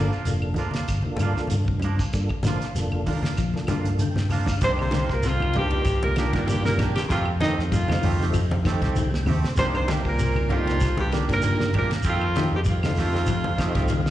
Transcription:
Already playing: D3 F3 A#3 D4 F4 A4
0.12 A#3 D4 F4, shekere
0.25 F1 C3 A#3 D4 F4 A4, closed hi-hat, shekere
0.42 claves
0.54 F3 A#3, closed hi-hat, low conga
0.58 D4 F4, shekere
0.71 F4, muted fingered electric bass stroke, snare, closed hi-hat, high conga
0.75 A#3 D4
0.88 G1, kick, closed hi-hat, claves, shekere
1.02 A#3 D4 F4, muted fingered electric bass stroke, high conga
1.07 A4
1.16 G2 D3, closed hi-hat, high conga, claves, shekere
1.21 F3 A#3 D4 F4
1.33 muted fingered electric bass stroke, snare, low conga, shekere
1.47 G2, closed hi-hat, high conga, shekere
1.65 C3, kick, high conga
1.79 G2, closed hi-hat, low conga, claves, shekere
1.84 F3 A#3 D4, muted clean electric guitar stroke
1.96 kick, high conga, shekere
2.13 G2 A#3 D4 F4 A4, kick, closed hi-hat, shekere
2.29 muted fingered electric bass stroke, kick, claves
2.43 A#1 D3 F3 A#3 D4 F4 C5, snare, closed hi-hat, high conga, shekere
2.47 D4 F4
2.62 snare, closed hi-hat, shekere
2.75 F1 G3 A#3 D4 F4 A4, snare, closed hi-hat, shekere
2.91 high conga, claves
3.06 D#3 F3 A#3 D4 F4, kick, open hi-hat, low conga, shekere
3.23 A#3 D4 F4, snare, high conga
3.37 A#1 F3, kick, closed hi-hat, claves, shekere
3.54 A#3 D4 F4 A4, muted fingered electric bass stroke, snare, high conga
3.67 G2 D3 F3 A#3 D4 F4, snare, closed hi-hat, high conga, claves, shekere
3.85 closed hi-hat, low conga, shekere
3.99 D3 G5, closed hi-hat, high conga, shekere
4.16 snare, high conga
4.30 F3 A#3 D4 F4 F5, snare, open hi-hat, high conga, claves, shekere
4.46 kick, snare, low conga, shekere
4.61 C2 C3 D#3 F3 A#3 D4 D#4 G4 C5, kick, ride bell, high conga, shekere
4.79 C3 D#3 C5, claves
4.91 D3 D#3 A#3 D4 G4, snare, ride bell, high conga, shekere
5.09 C2 A#4, kick, snare
5.14 A#2 A#4
5.23 C3 F4, snare, ride bell, shekere
5.28 F2 F4
5.40 high conga, claves
5.53 C2 G2 D#3 A#3 D4 D#4 G4, ride bell, low conga, shekere
5.58 G4
5.70 ride bell, high conga
5.84 C2, kick, ride bell, high conga, claves, shekere
6.03 A#2 A#4, high conga
6.16 D3 D#3 A#3 D4 F4 G4, snare, ride bell, claves, shekere
6.33 G2 A#2 A#3 D4 G4 A#4, kick, snare, ride bell, low conga
6.48 G2 G4, ride bell, high conga, shekere
6.65 A#2 C3 A#4, snare
6.78 A#1 D#3 A#3 D4 G4, snare, ride bell, low conga, claves, shekere
6.94 G2 G4, snare, ride bell
7.08 F2 D#3 A3 C4 F4 G4, kick, ride bell, shekere
7.25 claves
7.40 D#2 D#3 A3 C4 D#4 G4, snare, ride bell, high conga, shekere
7.58 F2, snare
7.70 F2 G3 F4, kick, ride bell, shekere
7.88 A3 C4 D#4 F4, snare, high conga, claves
8.02 F2 D#3 A3 C4 G4, open hi-hat, low conga, shekere
8.20 A3 C4 D#4 G4, snare, high conga
8.24 A3
8.33 F2 F3, kick, ride bell, claves, shekere
8.51 high conga
8.64 D#3 A3 C4 D#4 G4, kick, snare, ride bell, claves, shekere
8.81 C2 A3 C4 G4, kick, snare, ride bell, low conga
8.95 D#3 G5, ride bell, high conga, shekere
9.14 snare
9.26 D#2 C3 A3 C4 G4 C5, muted clean electric guitar stroke, open hi-hat, high conga, low conga, claves, shekere
9.44 muted fingered electric bass stroke, snare
9.56 C2 C3 D#3 F3 A#3 D4 D#4 G4 C5, kick, ride bell, shekere
9.74 C3 D#3 C5, claves
9.88 D3 D#3 A#3 D4 G4, snare, ride bell, high conga, shekere
10.05 C2 A#2 A#4, kick
10.09 A#4
10.19 C3, ride bell, high conga, shekere
10.35 high conga, claves
10.49 C2 F2 D#3 A#3 D4 D#4 F4 G4, muted clean electric guitar stroke, ride bell, low conga, shekere
10.54 F4
10.66 A#3 D4 G4, snare, ride bell, high conga
10.80 C2, kick, snare, ride bell, claves, shekere
10.97 G2 G4, high conga
11.12 D3 D#3 A#3 D4 G4, snare, ride bell, claves, shekere
11.29 G2 A#2 A#4, kick, snare, ride bell
11.34 A#4
11.42 ride bell, high conga, shekere
11.59 C3, snare
11.73 A#1 D#3 A#3 D4 G4 A#4, ride bell, low conga, claves, shekere
11.77 A#2 A#4
11.91 muted fingered electric bass stroke, snare, ride bell
12.02 F2 D#3 A3 C4 G4, kick, snare, ride bell, high conga, shekere
12.07 F4
12.21 claves
12.35 D#3 A3 C4 D#4 G4, snare, ride bell, high conga, shekere
12.52 F2 G2
12.56 G4
12.64 G3, kick, ride bell, shekere
12.69 F2 F4, high conga
12.82 A3 C4 D#4 G4, snare, high conga, claves
12.96 F2 D#3 A3 C4 G4, snare, open hi-hat, low conga, shekere
13.13 A3 C4 D#4 G4, snare
13.26 F2 F3, kick, ride bell, claves, shekere
13.44 high conga
13.57 D#3 A3 C4 D#4 G4 D#5, kick, snare, ride bell, claves, shekere
13.75 C2 A3 C4 G4, kick, snare, ride bell, low conga
13.88 D#3 F5, ride bell, high conga, shekere
14.06 snare

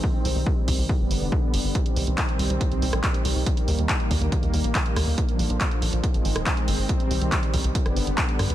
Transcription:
Already playing: D#3 C4
0.04 G3, kick
0.25 C2, open hi-hat
0.36 C2
0.46 kick
0.68 C2, kick, open hi-hat
0.79 C2
0.89 D3 B3, kick
1.00 G1
1.11 G1, open hi-hat
1.21 F1
1.32 kick
1.54 G1, open hi-hat
1.64 G1
1.75 D#3 C4, kick, closed hi-hat
1.86 closed hi-hat
1.96 C2, open hi-hat
2.07 C2, closed hi-hat
2.18 kick, clap, closed hi-hat
2.29 closed hi-hat
2.39 C2, open hi-hat
2.50 C2, closed hi-hat
2.61 kick, closed hi-hat
2.71 C2, closed hi-hat
2.82 C2, open hi-hat
2.93 A#1, cross-stick, closed hi-hat
3.04 kick, clap, closed hi-hat
3.14 closed hi-hat
3.25 C2, open hi-hat
3.36 C2
3.46 A#3, kick, closed hi-hat
3.57 closed hi-hat
3.68 D#2, open hi-hat
3.79 D#2, closed hi-hat
3.89 kick, clap, closed hi-hat
4.00 closed hi-hat
4.11 D#2, kick, open hi-hat
4.21 D#2, closed hi-hat
4.32 kick, closed hi-hat
4.43 D#2, closed hi-hat
4.54 D#2, open hi-hat
4.64 A#1, closed hi-hat
4.75 kick, clap, closed hi-hat
4.86 closed hi-hat
4.96 D#2, cross-stick, open hi-hat
5.07 D#2
5.18 D3 F3, kick, closed hi-hat
5.29 closed hi-hat
5.39 A#1, open hi-hat
5.50 A#1, closed hi-hat
5.61 kick, clap, closed hi-hat
5.71 closed hi-hat
5.82 A#1, open hi-hat
5.93 A#1, closed hi-hat
6.03 D#3 G#3 C4, kick, closed hi-hat
6.14 G#1, closed hi-hat
6.25 G#1, open hi-hat
6.36 D#1, cross-stick, closed hi-hat
6.46 kick, clap, closed hi-hat
6.57 closed hi-hat
6.68 G#1, open hi-hat
6.78 G#1
6.89 D#3 G3, kick, closed hi-hat
7.00 closed hi-hat
7.11 C2, open hi-hat
7.21 C2, closed hi-hat
7.32 kick, clap, closed hi-hat
7.43 closed hi-hat
7.54 C2, kick, open hi-hat
7.64 C2, closed hi-hat
7.75 D3 G3 B3, kick, closed hi-hat
7.86 G1, cross-stick, closed hi-hat
7.96 G1, open hi-hat
8.07 G1, closed hi-hat
8.18 kick, clap, closed hi-hat
8.29 closed hi-hat
8.39 G2, cross-stick, open hi-hat
8.50 D2, closed hi-hat

